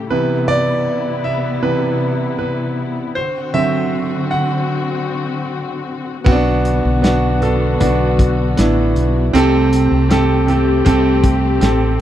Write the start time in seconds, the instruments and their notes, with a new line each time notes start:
Already playing: grand piano A2 G3 C#4 E5
0.10 grand piano C3 E3 B3 B4, string section C3 B3 E4
0.48 grand piano D5
1.24 grand piano E5
1.62 grand piano C3 E3 B3 B4
2.39 grand piano B4
3.15 string section D3 C4 F#4, grand piano C5
3.53 grand piano D3 F#3 C4 E5
4.31 grand piano F#5
6.24 fretless electric bass B1, string section D3 B3 F#4, grand piano B3 C4 F#4, kick, crash
6.32 grand piano D4
6.65 closed hi-hat
6.85 fretless electric bass B1
7.02 grand piano B3 D4 F#4, snare, closed hi-hat
7.41 grand piano B3 D4 A4, closed hi-hat
7.80 fretless electric bass B1, grand piano B3 D4 F#4, kick, closed hi-hat
8.19 kick, closed hi-hat
8.57 fretless electric bass A1, grand piano B3 D4 E4, snare, closed hi-hat
8.96 fretless electric bass B1, closed hi-hat
9.33 fretless electric bass C2, grand piano C3 C4 G4 A4, string section A3 C4 G4, closed hi-hat
9.72 closed hi-hat
9.91 fretless electric bass C2
10.10 grand piano C4 G4 A4, snare, closed hi-hat
10.47 grand piano C4 G4 A4, closed hi-hat
10.85 fretless electric bass C2, grand piano C4 G4 A4, kick, closed hi-hat
11.23 kick, closed hi-hat
11.61 fretless electric bass A1, grand piano C4 G4 A4, snare, closed hi-hat